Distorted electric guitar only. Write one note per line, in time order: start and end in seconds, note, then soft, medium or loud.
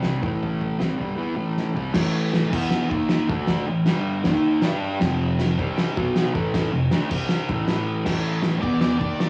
0.00 0.22 C3 medium
0.00 0.22 G3 medium
0.00 0.23 C4 medium
0.22 0.78 A2 medium
0.22 0.79 E3 loud
0.22 0.80 A3 medium
0.78 0.98 C3 medium
0.78 0.98 G3 loud
0.78 0.99 C4 loud
0.97 1.17 G2 medium
0.97 1.16 D3 loud
0.97 1.17 G3 medium
1.16 1.35 E3 medium
1.16 1.37 B3 loud
1.16 1.37 E4 loud
1.36 1.73 A2 medium
1.36 1.75 E3 medium
1.36 1.76 A3 medium
1.74 1.93 C3 medium
1.74 1.94 G3 medium
1.74 1.95 C4 loud
1.93 2.50 A2 loud
1.93 2.49 E3 loud
1.93 2.52 A3 loud
2.50 2.89 E3 loud
2.50 2.90 B3 loud
2.50 2.90 E4 loud
2.89 3.28 D#3 medium
2.89 3.28 A#3 loud
2.89 3.28 D#4 loud
3.28 3.66 D3 medium
3.28 3.67 A3 loud
3.28 3.68 D4 loud
3.67 3.83 A2 medium
3.67 3.83 E3 medium
3.86 4.24 G2 medium
3.86 4.25 D3 loud
3.86 4.25 G3 loud
4.25 4.62 D#3 medium
4.25 4.62 A#3 loud
4.25 4.63 D#4 loud
4.63 5.00 G3 medium
4.63 5.01 D4 loud
4.63 5.01 G4 loud
5.00 5.57 F2 loud
5.00 5.57 C3 loud
5.00 5.58 F3 loud
5.58 5.95 C3 medium
5.58 5.96 G3 loud
5.58 5.96 C4 loud
5.97 6.33 B2 loud
5.97 6.34 F#3 loud
5.97 6.34 B3 medium
6.34 6.71 A2 medium
6.34 6.72 E3 loud
6.34 6.72 A3 loud
6.72 6.88 F2 medium
6.72 6.88 C3 medium
6.91 7.10 D3 loud
6.91 7.10 A3 medium
6.91 7.11 D4 loud
7.10 7.48 C3 loud
7.10 7.48 G3 medium
7.10 7.49 C4 loud
7.49 8.04 A2 loud
7.49 8.05 E3 loud
7.49 8.06 A3 loud
8.05 8.62 A2 medium
8.05 8.62 E3 loud
8.05 8.63 A3 loud
8.62 8.99 E3 loud
8.62 8.99 B3 medium
8.62 9.01 E4 loud
9.00 9.29 D#3 medium
9.00 9.29 A#3 medium
9.00 9.29 D#4 loud